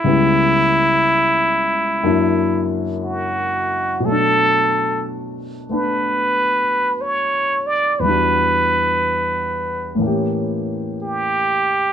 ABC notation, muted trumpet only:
X:1
M:4/4
L:1/8
Q:"Swing" 1/4=60
K:Bm
V:1 name="Muted trumpet"
E4- E z F2 | A2 z B3 c d | B4 z2 G2 |]